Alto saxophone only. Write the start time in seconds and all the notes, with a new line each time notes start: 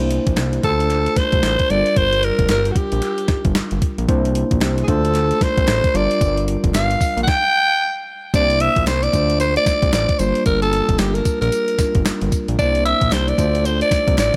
0.64 A4
1.17 C5
1.71 D5
1.98 C5
2.24 A#4
2.51 A#4
2.72 F#4
2.77 G4
4.84 G#4
4.89 A4
5.43 C5
5.97 D5
6.75 F5
7.23 F#5
7.28 G5
8.35 D5
8.61 E5
8.88 C5
9.03 D5
9.40 C5
9.57 D5
9.94 D5
10.20 C5
10.46 A#4
10.62 A4
10.99 G4
11.15 A#4
11.41 A#4
12.59 D5
12.86 E5
13.13 C5
13.29 D5
13.66 C5
13.82 D5
14.19 D5